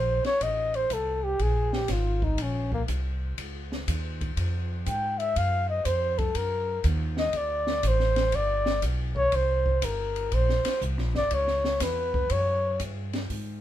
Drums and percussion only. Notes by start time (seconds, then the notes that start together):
0.24 snare, ride
0.41 kick, ride
0.74 ride
0.90 kick, hi-hat pedal, ride
1.39 kick, ride
1.73 snare
1.88 kick, snare, hi-hat pedal, ride
2.22 kick
2.38 kick, ride
2.72 kick
2.88 kick, hi-hat pedal, ride
3.38 kick, ride
3.72 snare
3.88 kick, hi-hat pedal, ride
4.21 kick, ride
4.37 kick, ride
4.86 kick, hi-hat pedal, ride
5.20 ride
5.36 kick, ride
5.85 kick, hi-hat pedal, ride
6.18 kick, ride
6.35 kick, ride
6.84 kick, hi-hat pedal, ride
7.17 snare
7.33 kick, ride
7.67 snare
7.83 kick, hi-hat pedal, ride
8.00 snare
8.16 snare, ride
8.32 kick, ride
8.66 snare
8.82 kick, hi-hat pedal, ride
9.16 kick
9.32 kick, ride
9.66 kick
9.82 kick, hi-hat pedal, ride
10.16 ride
10.32 kick, ride
10.49 snare
10.65 snare, ride
10.81 kick, hi-hat pedal
10.98 snare
11.15 snare
11.31 kick, ride
11.47 snare
11.64 snare
11.80 kick, snare, hi-hat pedal, ride
12.14 kick
12.30 kick, ride
12.80 kick, hi-hat pedal, ride
13.13 snare, ride
13.30 kick, open hi-hat